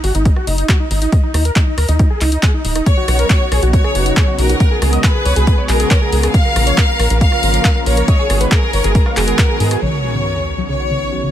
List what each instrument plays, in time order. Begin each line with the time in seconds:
0.04 analog synth bass G#1, supersaw synth F#4, open hi-hat
0.15 analog synth bass G#1, supersaw synth D#4, closed hi-hat
0.25 supersaw synth D#4, kick, closed hi-hat
0.36 supersaw synth F#4, cross-stick
0.47 analog synth bass F#1, supersaw synth D#4, open hi-hat
0.58 supersaw synth D#4, closed hi-hat
0.69 supersaw synth F#4, kick, clap, closed hi-hat
0.80 supersaw synth D#4
0.91 analog synth bass G#1, supersaw synth D#4, open hi-hat
1.02 supersaw synth D#4, closed hi-hat
1.12 supersaw synth D#5, kick, closed hi-hat
1.23 supersaw synth D#4
1.34 analog synth bass D#2, supersaw synth D#4, cross-stick, open hi-hat
1.45 supersaw synth A#4, closed hi-hat
1.56 supersaw synth D#4, kick, clap, closed hi-hat
1.67 supersaw synth D#4
1.78 analog synth bass D#2, supersaw synth A#4, cross-stick, open hi-hat
1.89 analog synth bass D#2, supersaw synth D#4, closed hi-hat
1.99 supersaw synth D#4, kick, closed hi-hat
2.10 supersaw synth G#4
2.21 analog synth bass C#2, supersaw synth D#4, clap, open hi-hat
2.32 supersaw synth D#4, closed hi-hat
2.43 supersaw synth G#4, kick, clap, closed hi-hat
2.54 supersaw synth D#4
2.65 analog synth bass D#1, supersaw synth D#4, open hi-hat
2.75 supersaw synth D#4, cross-stick, closed hi-hat
2.86 analog synth pad C#3 F#3 B3 D#4, violin section C#5, supersaw synth C#5, kick, closed hi-hat
2.97 supersaw synth F#4
3.08 analog synth bass B1, analog synth pad C#3 F#3 B3 D#4, supersaw synth F#4, cross-stick, open hi-hat
3.19 supersaw synth A#4, closed hi-hat
3.30 supersaw synth F#4, kick, clap, closed hi-hat
3.41 supersaw synth F#4
3.52 analog synth bass B1, supersaw synth G#4, cross-stick, open hi-hat
3.62 analog synth bass B1, analog synth pad C#3 F#3 B3 D#4, supersaw synth F#4, closed hi-hat
3.73 analog synth pad C#3 F#3 B3 D#4, supersaw synth F#4, violin section C#5, kick, closed hi-hat
3.84 analog synth pad C#3 F#3 B3 D#4, supersaw synth G#4, cross-stick
3.95 analog synth bass F#1, supersaw synth F#4, open hi-hat
4.06 analog synth pad C#3 F#3 B3 D#4, supersaw synth F#4, closed hi-hat
4.17 supersaw synth G#4, kick, clap, closed hi-hat
4.28 analog synth pad C#3 F#3 B3 D#4, supersaw synth F#4
4.39 analog synth bass B1, supersaw synth F#4, violin section A#4, open hi-hat
4.49 supersaw synth F#4, closed hi-hat
4.60 analog synth pad C#3 G#3 B3 F#4, supersaw synth F#5, kick, closed hi-hat
4.71 supersaw synth G#4
4.82 analog synth bass C#2, analog synth pad C#3 G#3 B3 F#4, supersaw synth G#4, cross-stick, open hi-hat
4.93 supersaw synth D#5, closed hi-hat
5.04 supersaw synth G#4, violin section B4, kick, clap, closed hi-hat
5.15 supersaw synth G#4
5.25 analog synth bass C#2, supersaw synth C#5, open hi-hat
5.36 analog synth bass C#2, analog synth pad C#3 G#3 B3 F#4, supersaw synth G#4, closed hi-hat
5.47 analog synth pad C#3 G#3 B3 F#4, supersaw synth G#4, kick, closed hi-hat
5.58 analog synth pad C#3 G#3 B3 F#4, supersaw synth C#5
5.69 analog synth bass B1, supersaw synth G#4, violin section A#4, clap, open hi-hat
5.80 analog synth pad C#3 G#3 B3 F#4, supersaw synth G#4, closed hi-hat
5.91 supersaw synth C#5, kick, clap, closed hi-hat
6.02 analog synth pad C#3 G#3 B3 F#4, supersaw synth G#4
6.12 analog synth bass C#2, supersaw synth G#4, open hi-hat
6.23 supersaw synth G#4, cross-stick, closed hi-hat
6.34 analog synth pad C#3 F3 A#3 F4, violin section F5, supersaw synth F5, kick, closed hi-hat
6.45 supersaw synth A#4
6.56 analog synth bass A#1, analog synth pad C#3 F3 A#3 F4, supersaw synth A#4, cross-stick, open hi-hat
6.67 supersaw synth C#5, closed hi-hat
6.78 supersaw synth A#4, kick, clap, closed hi-hat
6.89 supersaw synth A#4
6.99 analog synth bass A#1, supersaw synth A#4, cross-stick, open hi-hat
7.10 analog synth bass A#1, analog synth pad C#3 F3 A#3 F4, supersaw synth A#4, closed hi-hat
7.21 analog synth pad C#3 F3 A#3 F4, supersaw synth A#4, violin section F5, kick, closed hi-hat
7.32 analog synth pad C#3 F3 A#3 F4, supersaw synth A#4, cross-stick
7.43 analog synth bass G#1, supersaw synth A#4, open hi-hat
7.54 analog synth pad C#3 F3 A#3 F4, supersaw synth A#4, closed hi-hat
7.65 supersaw synth A#4, kick, clap, closed hi-hat
7.76 analog synth pad C#3 F3 A#3 F4, supersaw synth A#4
7.86 analog synth bass A#1, supersaw synth A#4, violin section C#5, open hi-hat
7.97 supersaw synth A#4, closed hi-hat
8.08 analog synth pad D#3 G#3 B3 F#4, supersaw synth D#5, kick, closed hi-hat
8.19 supersaw synth G#4
8.30 analog synth bass G#1, analog synth pad D#3 G#3 B3 F#4, supersaw synth G#4, cross-stick, open hi-hat
8.41 supersaw synth B4, closed hi-hat
8.52 supersaw synth G#4, violin section A#4, kick, clap, closed hi-hat
8.62 supersaw synth G#4
8.73 analog synth bass G#1, supersaw synth C#5, open hi-hat
8.84 analog synth bass G#1, analog synth pad D#3 G#3 B3 F#4, supersaw synth G#4, closed hi-hat
8.95 analog synth pad D#3 G#3 B3 F#4, supersaw synth G#4, kick, closed hi-hat
9.06 analog synth pad D#3 G#3 B3 F#4, supersaw synth F5, cross-stick
9.17 analog synth bass F#1, supersaw synth G#4, violin section A#4, clap, open hi-hat
9.28 analog synth pad D#3 G#3 B3 F#4, supersaw synth G#4, closed hi-hat
9.38 supersaw synth F#5, kick, clap, closed hi-hat
9.49 analog synth pad D#3 G#3 B3 F#4, supersaw synth G#4
9.60 analog synth bass G#2, supersaw synth G#4, open hi-hat
9.71 supersaw synth G#4, cross-stick, closed hi-hat
9.82 analog synth bass B1, synth arpeggio sound C#3, analog synth pad D#3 B3 C#4 F#4, violin section C#5, sub drop
10.03 analog synth pad D#3 B3 C#4 F#4, synth arpeggio sound F#3
10.15 synth arpeggio sound C#3
10.26 synth arpeggio sound B3
10.36 synth arpeggio sound C#3
10.58 analog synth pad D#3 B3 C#4 F#4, synth arpeggio sound F#3
10.69 synth arpeggio sound C#3, analog synth pad D#3 B3 C#4 F#4, violin section C#5
10.80 analog synth pad D#3 B3 C#4 F#4, synth arpeggio sound B3
10.91 synth arpeggio sound C#3
11.02 analog synth pad D#3 B3 C#4 F#4
11.12 synth arpeggio sound F#3
11.23 synth arpeggio sound C#3, analog synth pad D#3 B3 C#4 F#4